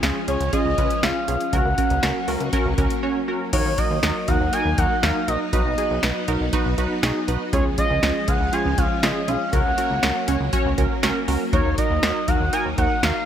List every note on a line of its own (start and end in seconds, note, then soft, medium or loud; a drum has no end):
0.00 0.12 C#2 loud
0.00 1.51 F3 medium
0.00 1.51 G#3 medium
0.00 1.51 C#4 loud
0.00 0.19 C#4 medium
0.00 0.19 F4 medium
0.00 0.19 G#4 loud
0.00 snare loud
0.00 closed hi-hat medium
0.28 0.37 C#2 medium
0.28 0.44 C#4 medium
0.28 0.44 F4 medium
0.28 0.44 G#4 medium
0.28 0.51 C#5 medium
0.28 closed hi-hat medium
0.40 0.50 C#2 medium
0.40 closed hi-hat medium
0.53 0.69 C#4 loud
0.53 0.69 F4 medium
0.53 0.69 G#4 loud
0.53 1.04 D#5 loud
0.53 kick medium
0.53 closed hi-hat medium
0.66 0.75 C#2 loud
0.78 0.87 C#2 medium
0.78 0.94 C#4 medium
0.78 0.94 F4 medium
0.78 0.94 B4 medium
0.78 kick medium
0.78 closed hi-hat medium
0.90 closed hi-hat medium
1.03 1.12 C#2 loud
1.03 1.19 C#4 medium
1.03 1.19 F4 medium
1.03 1.19 G#4 medium
1.03 1.54 F5 loud
1.03 snare loud
1.03 closed hi-hat medium
1.28 1.37 B1 medium
1.28 1.44 C#4 medium
1.28 1.44 F4 medium
1.28 1.44 G#4 medium
1.28 closed hi-hat medium
1.41 closed hi-hat soft
1.53 1.62 C#2 loud
1.53 3.51 F#3 medium
1.53 3.51 A#3 medium
1.53 1.69 C#4 medium
1.53 3.51 C#4 medium
1.53 1.69 F#4 medium
1.53 1.69 A#4 loud
1.53 2.28 F#5 loud
1.53 kick loud
1.53 closed hi-hat medium
1.65 1.75 C#2 medium
1.78 1.94 C#4 medium
1.78 1.95 F#4 medium
1.78 1.94 A#4 medium
1.78 kick medium
1.78 closed hi-hat medium
1.90 2.00 C#2 loud
1.90 closed hi-hat medium
2.03 2.12 C#2 loud
2.03 2.19 C#4 medium
2.03 2.20 F#4 medium
2.03 2.19 A#4 medium
2.03 snare loud
2.03 closed hi-hat medium
2.28 2.37 C#2 loud
2.28 2.44 C#4 medium
2.28 2.44 F#4 medium
2.28 2.44 A#4 loud
2.28 open hi-hat medium
2.40 2.50 C#2 loud
2.40 closed hi-hat medium
2.53 2.69 C#4 loud
2.53 2.69 F#4 loud
2.53 2.69 A#4 loud
2.53 kick medium
2.53 closed hi-hat medium
2.65 2.75 C#2 loud
2.78 2.87 C#2 loud
2.78 2.94 C#4 medium
2.78 2.94 F#4 medium
2.78 2.94 A#4 loud
2.78 kick medium
2.78 closed hi-hat medium
2.90 closed hi-hat medium
3.03 3.19 C#4 medium
3.03 3.19 F#4 medium
3.03 3.19 C#5 loud
3.28 3.45 C#4 medium
3.28 3.44 F#4 medium
3.28 3.44 A#4 loud
3.53 3.62 D#2 loud
3.53 5.51 F#3 medium
3.53 5.51 A#3 medium
3.53 3.69 D#4 medium
3.53 7.49 D#4 medium
3.53 3.69 F#4 medium
3.53 3.70 A#4 loud
3.53 3.80 C#5 medium
3.53 kick loud
3.53 closed hi-hat medium
3.53 crash medium
3.66 3.75 D#2 medium
3.78 3.95 D#4 medium
3.78 3.95 F#4 medium
3.78 3.95 A#4 medium
3.78 4.30 D#5 loud
3.78 kick medium
3.78 closed hi-hat medium
3.91 4.00 D#2 loud
4.03 4.12 D#2 loud
4.03 4.20 D#4 medium
4.03 4.20 F#4 medium
4.03 4.20 A#4 medium
4.03 snare loud
4.03 closed hi-hat medium
4.28 4.37 D#2 medium
4.28 4.45 D#4 medium
4.28 4.45 F#4 medium
4.28 4.45 A#4 medium
4.28 4.52 F#5 loud
4.28 kick loud
4.28 closed hi-hat medium
4.41 4.50 D#2 medium
4.53 4.70 D#4 loud
4.53 4.70 F#4 medium
4.53 4.69 A#4 loud
4.53 4.80 G#5 loud
4.53 closed hi-hat medium
4.65 4.75 D#2 loud
4.78 4.87 D#2 loud
4.78 4.95 D#4 medium
4.78 4.95 F#4 medium
4.78 4.95 A#4 medium
4.78 5.05 F#5 loud
4.78 kick medium
4.78 closed hi-hat medium
5.03 5.12 D#2 loud
5.03 5.19 D#4 loud
5.03 5.19 F#4 medium
5.03 5.19 A#4 loud
5.03 5.27 F5 loud
5.03 snare loud
5.03 closed hi-hat medium
5.28 5.37 A#1 medium
5.28 5.44 D#4 medium
5.28 5.44 F#4 medium
5.28 5.44 A#4 medium
5.28 5.39 D#5 medium
5.28 closed hi-hat medium
5.53 5.62 B1 loud
5.53 7.51 F#3 medium
5.53 7.51 B3 medium
5.53 5.69 D#4 loud
5.53 5.70 F#4 medium
5.53 5.70 B4 loud
5.53 6.24 D#5 medium
5.53 kick loud
5.53 closed hi-hat medium
5.66 5.75 B1 medium
5.78 5.95 D#4 medium
5.78 5.95 F#4 medium
5.78 5.95 G#4 medium
5.78 closed hi-hat medium
5.91 6.00 B1 loud
6.03 6.12 B1 loud
6.03 6.20 D#4 medium
6.03 6.20 F#4 medium
6.03 6.20 B4 medium
6.03 snare loud
6.03 closed hi-hat medium
6.28 6.37 B1 loud
6.28 6.45 D#4 medium
6.28 6.45 F#4 medium
6.28 6.45 A#4 loud
6.28 closed hi-hat medium
6.41 6.50 B1 medium
6.53 6.70 D#4 loud
6.53 6.70 F#4 loud
6.53 6.70 B4 loud
6.53 kick medium
6.53 closed hi-hat medium
6.66 6.75 B1 loud
6.78 6.87 B1 medium
6.78 6.94 D#4 medium
6.78 6.94 F#4 medium
6.78 6.94 B4 loud
6.78 closed hi-hat medium
7.03 7.12 B1 loud
7.03 7.19 D#4 loud
7.03 7.19 F#4 loud
7.03 7.20 G#4 loud
7.03 snare loud
7.03 closed hi-hat medium
7.28 7.37 B1 medium
7.28 7.45 D#4 medium
7.28 7.44 F#4 medium
7.28 7.44 B4 loud
7.28 closed hi-hat medium
7.53 7.62 C#2 loud
7.53 9.51 F3 medium
7.53 9.51 G#3 medium
7.53 7.69 C#4 loud
7.53 11.49 C#4 loud
7.53 7.69 F4 medium
7.53 7.69 G#4 loud
7.53 7.64 C#5 loud
7.53 kick loud
7.53 closed hi-hat medium
7.65 7.75 C#2 medium
7.78 7.95 C#4 medium
7.78 7.94 F4 medium
7.78 7.95 G#4 medium
7.78 8.29 D#5 loud
7.78 kick medium
7.78 closed hi-hat medium
7.91 8.00 C#2 loud
8.03 8.12 C#2 loud
8.03 8.19 C#4 medium
8.03 8.19 F4 medium
8.03 8.19 G#4 medium
8.03 snare loud
8.03 closed hi-hat medium
8.28 8.37 C#2 loud
8.28 8.44 C#4 medium
8.28 8.44 F4 medium
8.28 8.44 G#4 medium
8.28 8.55 F#5 loud
8.28 kick loud
8.28 closed hi-hat medium
8.40 8.50 C#2 loud
8.53 8.69 C#4 loud
8.53 8.69 F4 medium
8.53 8.69 G#4 loud
8.53 8.79 G#5 loud
8.53 closed hi-hat medium
8.65 8.75 C#2 loud
8.78 8.87 C#2 medium
8.78 8.94 C#4 medium
8.78 8.94 F4 medium
8.78 8.94 G#4 medium
8.78 9.04 F5 loud
8.78 kick medium
8.78 closed hi-hat medium
9.03 9.12 C#2 loud
9.03 9.19 C#4 loud
9.03 9.19 F4 medium
9.03 9.19 G#4 loud
9.03 9.29 D#5 loud
9.03 snare loud
9.03 closed hi-hat medium
9.28 9.37 B1 medium
9.28 9.44 C#4 medium
9.28 9.44 F4 medium
9.28 9.44 G#4 medium
9.28 9.54 F5 loud
9.28 closed hi-hat medium
9.53 9.62 C#2 loud
9.53 13.25 F#3 medium
9.53 13.25 A#3 medium
9.53 9.69 C#4 loud
9.53 9.69 F#4 medium
9.53 9.69 A#4 loud
9.53 10.28 F#5 loud
9.53 kick loud
9.53 closed hi-hat medium
9.65 9.75 C#2 medium
9.78 9.94 C#4 medium
9.78 9.94 F#4 medium
9.78 9.94 A#4 medium
9.78 closed hi-hat medium
9.90 10.00 C#2 loud
10.03 10.12 C#2 loud
10.03 10.19 C#4 medium
10.03 10.19 F#4 medium
10.03 10.19 A#4 medium
10.03 snare loud
10.03 closed hi-hat medium
10.28 10.37 C#2 loud
10.28 10.44 C#4 medium
10.28 10.44 F#4 medium
10.28 10.44 C#5 loud
10.28 closed hi-hat medium
10.41 10.50 C#2 loud
10.53 10.69 C#4 loud
10.53 10.69 F#4 loud
10.53 10.69 C#5 loud
10.53 kick medium
10.53 closed hi-hat medium
10.66 10.75 C#2 loud
10.78 10.87 C#2 loud
10.78 10.94 C#4 medium
10.78 10.94 F#4 medium
10.78 10.94 A#4 loud
10.78 kick medium
10.78 closed hi-hat medium
11.03 11.12 C#2 loud
11.03 11.19 C#4 loud
11.03 11.19 F#4 loud
11.03 11.19 A#4 loud
11.03 snare loud
11.03 closed hi-hat medium
11.28 11.37 C#2 medium
11.28 11.44 C#4 medium
11.28 11.44 F#4 medium
11.28 11.44 A#4 loud
11.28 open hi-hat medium
11.53 11.62 D#2 loud
11.53 13.25 D#4 medium
11.53 11.69 D#4 loud
11.53 11.69 F#4 medium
11.53 11.69 A#4 loud
11.53 11.76 C#5 medium
11.53 kick loud
11.53 closed hi-hat medium
11.65 11.75 D#2 loud
11.78 11.95 D#4 medium
11.78 11.95 F#4 medium
11.78 11.95 A#4 medium
11.78 12.29 D#5 loud
11.78 kick medium
11.78 closed hi-hat medium
11.91 12.00 D#2 loud
12.03 12.12 D#2 loud
12.03 12.19 D#4 medium
12.03 12.19 F#4 medium
12.03 12.19 A#4 medium
12.03 snare loud
12.03 closed hi-hat medium
12.28 12.37 D#2 medium
12.28 12.44 D#4 medium
12.28 12.44 F#4 medium
12.28 12.44 A#4 medium
12.28 12.52 F#5 loud
12.28 kick loud
12.28 closed hi-hat medium
12.41 12.50 D#2 medium
12.53 12.69 D#4 loud
12.53 12.69 F#4 medium
12.53 12.69 A#4 loud
12.53 12.64 G#5 loud
12.53 closed hi-hat medium
12.66 12.75 D#2 medium
12.78 12.87 D#2 loud
12.78 12.94 D#4 medium
12.78 12.94 F#4 medium
12.78 12.94 A#4 medium
12.78 13.01 F#5 loud
12.78 kick medium
12.78 closed hi-hat medium
13.03 13.12 D#2 loud
13.03 13.19 D#4 loud
13.03 13.19 F#4 medium
13.03 13.19 A#4 loud
13.03 13.25 F5 loud
13.03 snare loud
13.03 closed hi-hat medium